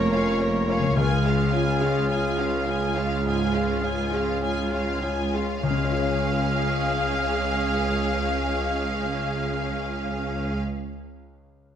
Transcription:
Already playing: F1 F2 F3 A#3 C#4 F4 A#4 C#5
0.12 C#4 F4 C#5 F5
0.40 A#3 C#4 A#4 C#5
0.68 A#3 C#4 C#5 F5
0.79 C#3
0.83 G#3
0.88 C#4
0.92 C#2 F4
0.97 C#2 G#4 F5 G#5
1.24 G#3 C#4 F4 F5
1.52 C#4 F4 G#4 G#5
1.81 C#4 F4 G#4 F5
2.09 C#4 F4 G#4 G#5
2.38 C#4 F4 F5
2.67 C#4 F4 G#4 G#5
2.95 G#3 C#4 F4 F5
3.25 G#2 F4 G#4 G#5
3.53 G#3 C#4 F4 F5
3.81 C#4 F4 G#4
3.85 G#5
4.11 C#4 F4 G#4 F5
4.42 C#4 F4 G#4 G#5
4.70 C#4 F4 F5
5.02 C#4 F4 G#4 G#5
5.33 G#3 C#4 F4 F5
5.62 C#2 C#3 C#4 G#4 F5
5.70 C#3 G#3
5.77 G#3 C#4
5.84 C#4 F4
5.91 F4 C#5
5.98 C#5

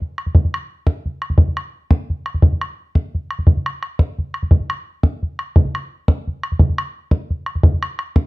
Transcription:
0.01 bodhran
0.18 bodhran
0.26 bodhran
0.35 bodhran
0.45 bodhran
0.54 bodhran
0.87 bodhran
1.06 bodhran
1.22 bodhran
1.30 bodhran
1.38 bodhran
1.47 bodhran
1.57 bodhran
1.91 bodhran
2.10 bodhran
2.26 bodhran
2.34 bodhran
2.42 bodhran
2.52 bodhran
2.61 bodhran
2.95 bodhran
3.15 bodhran
3.31 bodhran
3.39 bodhran
3.47 bodhran
3.57 bodhran
3.66 bodhran
3.83 bodhran
3.99 bodhran
4.19 bodhran
4.34 bodhran
4.43 bodhran
4.51 bodhran
4.60 bodhran
4.70 bodhran
5.03 bodhran
5.23 bodhran
5.39 bodhran
5.56 bodhran
5.65 bodhran
5.75 bodhran
6.08 bodhran
6.27 bodhran
6.43 bodhran
6.52 bodhran
6.60 bodhran
6.69 bodhran
6.78 bodhran
7.11 bodhran
7.30 bodhran
7.46 bodhran
7.55 bodhran
7.63 bodhran
7.73 bodhran
7.83 bodhran
7.99 bodhran
8.16 bodhran

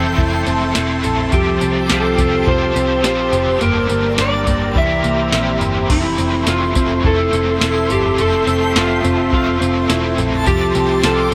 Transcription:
Already playing: F1 E3 C4 E4 A4 E5 A5 C6
0.15 F1 A3 C4 E4, kick, floor tom
0.21 A4
0.46 F1 C4, tambourine
0.74 E1 A3 C4 E4, snare, tambourine
0.79 A4
1.04 A#1 A4, floor tom, tambourine
1.18 floor tom
1.32 C2 C3 F3 C4 F4 G4 C5, kick, floor tom, tambourine
1.61 C2 C4, tambourine
1.89 C2 F4 A4, snare, tambourine
2.17 C2 C4 F4 G4, kick, floor tom, tambourine
2.23 C4
2.46 C2 F3 C4 F4 C5, kick, floor tom
2.51 G4
2.76 C2 C4, tambourine
3.03 A#1 F3 C4 F4 C5, snare, tambourine
3.08 G4
3.32 F1 G4, floor tom, tambourine
3.47 floor tom
3.58 G1 G2 D3 A#3 A#4 D5 A#5, floor tom, tambourine
3.62 G3 A#3 D4 G4 A#4
3.89 G1 A#3, tambourine
4.18 G1 D4 D5, snare, tambourine
4.47 G1 A#3, kick, floor tom, tambourine
4.74 C2 E3 G3 A#3 E4 C5 E5, kick, floor tom
4.80 G4
5.04 C2 A#3, tambourine
5.31 A#1 G3 A#3 C4 E4, snare, tambourine
5.36 G4
5.61 G1 G4, floor tom, tambourine
5.75 floor tom
5.89 F1 F3 A3 C4 E4 A4 E5 C6, kick, floor tom, crash, tambourine
6.18 F1 C4, tambourine
6.47 F1 F4, snare, tambourine
6.75 F1 C4 E4, kick, floor tom, tambourine
6.80 A3
7.03 F1 F3 A3 C4 E4 A4, kick, floor tom
7.08 E4
7.33 F1 C4, tambourine
7.60 E1 F3 A3 C4 E4, snare, tambourine
7.65 E4
7.90 G1 G4 A4, floor tom, tambourine
8.04 floor tom
8.16 F1 F3 A3, floor tom, tambourine
8.21 C4 A4
8.47 F1 C4, tambourine
8.76 F1 F4, snare, tambourine
9.04 F1 C4, floor tom, tambourine
9.32 F1 F3 A3 C4 F4, kick, floor tom
9.61 F1 C4, tambourine
9.88 E1 F3 A3 C4 E4, snare, tambourine
9.93 E4
10.18 A#1 A4, floor tom, tambourine
10.32 floor tom
10.45 C2 C3 F3 C4 F4 G4 C5 C6, kick, floor tom, tambourine
10.75 C2 C4, tambourine
11.03 C2 F4 A4, snare, tambourine
11.31 G4

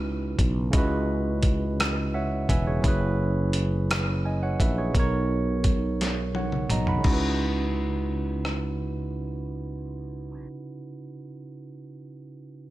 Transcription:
Already playing: C#2 C#3 C#4 D#4 E4 F#4 B4
0.39 B1, kick, closed hi-hat
0.70 C#2 C#3 C#4 D#5, kick, closed hi-hat
0.75 E4 F#4 B4
1.43 kick, closed hi-hat
1.80 cross-stick, closed hi-hat
2.14 C#5 E5 F#5
2.49 E1 B4 E5 G#5, kick, closed hi-hat
2.67 G#4 C#5
2.80 F#3 C#4 E4, kick, closed hi-hat
2.85 F#1 G#4 B4
3.53 closed hi-hat
3.91 cross-stick, closed hi-hat
4.26 D#5 G#5
4.43 C#5 F#5
4.60 A#1 B4 E5, kick, closed hi-hat
4.78 G#4 C#5
4.92 B1 B2 B3 D#4, kick, closed hi-hat
4.98 A#4 C#5
5.64 kick, closed hi-hat
6.01 snare, closed hi-hat
6.35 C#5 F#5, high tom
6.52 mid tom
6.70 B1 D#5 A#5, closed hi-hat, mid tom
6.87 F#5 B5, floor tom
6.97 C#3 C#4
7.04 C#2 D#4 E4, kick, crash
7.10 F#4 B4
8.45 cross-stick

